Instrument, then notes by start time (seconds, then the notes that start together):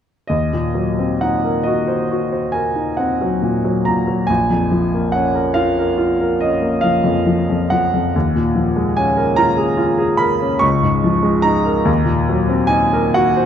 grand piano
0.27 D#2 D#5
0.53 A#2
0.74 F#3
0.99 C4
1.21 D#4 F#5
1.44 A#4
1.63 F#4 D#5
1.88 C5
2.11 F#4
2.32 C5
2.52 A#4 G#5
2.76 D#4
2.97 C4 F#5
3.21 F#3
3.42 A#2
3.65 F#3
3.85 A#2 A#5
4.07 F#3
4.27 A#1 G#5
4.50 F2
4.71 F3
4.94 A#3
5.12 C#4 F#5
5.35 A#4
5.54 F4 F5
5.79 A#4
5.98 F4
6.21 A#4
6.41 C#4 D#5
6.62 A#3
6.81 F3 F5
7.04 F2
7.26 F3
7.50 F2
7.70 F3 F#5
7.94 F2
8.16 D#2
8.36 A#2
8.55 F3
8.76 G#3
8.97 C#4 G#5
9.17 A#4
9.36 F4 A#5
9.57 G#4
9.78 F4
9.98 G#4
10.17 A#4 B5
10.41 C#4
10.59 C#2 C#6
10.83 G#2
11.04 F3
11.23 G#3
11.42 D#4 A#5
11.65 A#4
11.85 D#2
12.05 A#2
12.29 F#3
12.49 C4
12.67 D#4 G#5
12.93 A#4
13.14 F#4 F#5
13.37 C5